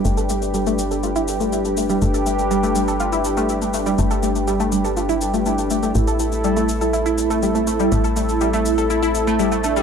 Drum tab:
SH |xxxxxxxxxxxxxxxx|xxxxxxxxxxxxxxxx|xxxxxxxxxxxxxxxx|xxxxxxxxxxxxxxxx|

SH |xxxxxxxxxxxxxxxx|